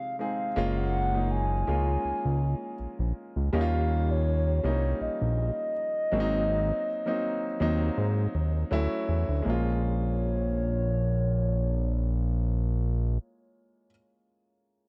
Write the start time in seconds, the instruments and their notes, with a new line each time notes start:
Already playing: grand piano C3 G#3 D#4 G#4, soft synth lead F5
0.19 grand piano G#3 C4 D#4 G#4, soft synth lead F5
0.56 analog synth bass F#1, grand piano G#3 A#3 C#4 F4
0.77 soft synth lead F#5
1.13 grand piano G#3 A#3 C#4 D#4
1.31 soft synth lead G#5
1.67 analog synth bass C#2, grand piano G#3 A#3 C#4 F4
2.05 analog synth bass C#2
2.25 analog synth bass C#2
2.79 analog synth bass A#1
2.99 analog synth bass A#1
3.36 analog synth bass C#2
3.53 analog synth bass D#2, grand piano G3 A#3 C#4 D#4, soft synth lead F5
3.61 grand piano F4
4.11 soft synth lead C#5
4.63 analog synth bass C2, grand piano G3 A#3 C#4 D#4, soft synth lead C#5
5.01 analog synth bass A#1, soft synth lead D#5
5.22 analog synth bass A#1
6.12 analog synth bass G#1, grand piano F#3 A#3 C4 C#4
6.20 grand piano D#4
7.06 grand piano F#3 A#3 C4 D#4
7.60 analog synth bass D#2, grand piano F#3 A#3 C4 D#4
7.98 analog synth bass G#2
8.35 analog synth bass D#2
8.71 analog synth bass D2, grand piano F#3 A3 C#4 E4
9.09 analog synth bass E2
9.29 analog synth bass D2
9.42 analog synth bass A#1, grand piano G#3 A#3, soft synth lead C#5
9.47 grand piano C#4 F4